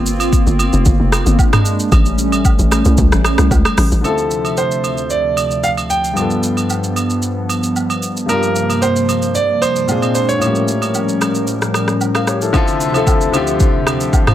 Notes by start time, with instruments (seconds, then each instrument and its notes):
Already playing: log drum bass G1, analog synth pad A#3 C4 F4
0.06 shaker
0.20 high agogo, shaker
0.33 kick, shaker
0.47 log drum bass G1, shaker
0.59 high agogo, shaker
0.73 log drum bass F1, shaker
0.85 log drum bass G1, kick, shaker
1.00 log drum bass F1
1.12 cross-stick, high agogo, shaker
1.26 log drum bass G1, shaker
1.39 analog synth pad G#3 D4, kick, low woodblock, shaker
1.53 cross-stick, mid tom, high agogo, shaker
1.65 shaker
1.80 shaker
1.92 log drum bass A1, analog synth pad G3 A3 C#4, kick, high agogo, shaker
2.06 shaker
2.18 shaker
2.32 high agogo, shaker
2.45 kick, low woodblock, shaker
2.59 log drum bass A1, shaker
2.71 cross-stick, high agogo, shaker
2.85 log drum bass C2, shaker
2.98 log drum bass C#2, kick, shaker
3.12 log drum bass A1, cross-stick, shaker
3.25 cross-stick, high agogo, shaker
3.38 log drum bass C2, cross-stick, shaker
3.51 log drum bass C#2, kick, low woodblock, shaker
3.65 cross-stick, high agogo, shaker
3.78 log drum bass A1, cross-stick, open hi-hat, shaker
3.92 log drum bass A1, shaker
4.01 analog synth pad D2 C3 F3 E5, grand piano D3 C4 A4, high agogo, shaker
4.05 grand piano E4 F4 A4
4.18 shaker
4.31 shaker
4.45 high agogo, shaker
4.57 grand piano C5, low woodblock, shaker
4.71 shaker
4.84 high agogo, shaker
4.97 shaker
5.10 grand piano D5, shaker
5.37 high agogo, shaker
5.51 shaker
5.64 grand piano F5, low woodblock, shaker
5.77 high agogo, shaker
5.90 grand piano G5, shaker
6.04 shaker
6.14 grand piano G2 B3 D4, analog synth pad G2 F3 B3, high agogo, shaker
6.20 grand piano F4 A4
6.30 shaker
6.43 shaker
6.57 high agogo, shaker
6.70 low woodblock, shaker
6.84 shaker
6.96 high agogo, shaker
7.10 shaker
7.22 shaker
7.49 high agogo, shaker
7.63 shaker
7.76 low woodblock, shaker
7.90 high agogo, shaker
8.03 shaker
8.17 shaker
8.26 grand piano G2 A#3 A#4, analog synth pad C3 F3 A#3, high agogo, shaker
8.30 grand piano D4 F4
8.34 grand piano G4
8.43 shaker
8.56 shaker
8.70 high agogo, shaker
8.82 grand piano C5, low woodblock, shaker
8.96 shaker
9.09 high agogo, shaker
9.22 shaker
9.35 grand piano D5, shaker
9.62 grand piano C5, high agogo, shaker
9.76 shaker
9.87 grand piano A#2 C4 D4 F4 G#4, analog synth pad A#2 G#3 C4 D4, low woodblock, shaker
10.02 high agogo, shaker
10.15 grand piano C5, shaker
10.29 grand piano C#5, shaker
10.38 grand piano A2 A#3 C#4, analog synth pad A2 F3 G3 C#4 A#4, high agogo, shaker
10.43 grand piano E4 F4 G4
10.55 shaker
10.68 shaker
10.82 high agogo, shaker
10.95 low woodblock, shaker
11.09 shaker
11.21 cross-stick, high agogo, shaker
11.35 shaker
11.47 shaker
11.62 cross-stick, shaker
11.74 cross-stick, high agogo, shaker
11.88 cross-stick, shaker
12.01 low woodblock, shaker
12.15 grand piano A#4 F5, cross-stick, high agogo, shaker
12.27 grand piano G4 C#5, cross-stick, shaker
12.42 grand piano E4 A4, shaker
12.53 analog synth pad D2 C3 F3 E5, grand piano D3 C4 E4 F4, kick, high agogo, shaker
12.57 grand piano A4
12.68 shaker
12.80 shaker
12.93 grand piano D3 C4 E4 F4 A4, high agogo, shaker
13.07 kick, low woodblock, shaker
13.21 shaker
13.32 grand piano D3 C4 E4 F4 G4, high agogo, shaker
13.47 shaker
13.60 kick, shaker
13.87 cross-stick, high agogo, shaker
14.01 shaker
14.13 kick, low woodblock, shaker
14.27 grand piano C4 F4, cross-stick, mid tom, high agogo, shaker